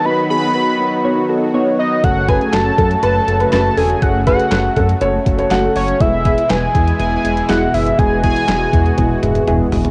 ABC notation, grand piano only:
X:1
M:4/4
L:1/16
Q:1/4=121
K:F#dor
V:1 name="Grand piano"
z16 | z2 B z3 A z B z2 B B z A z | z2 B z3 A z c z2 c f3 z | z16 |
z16 |]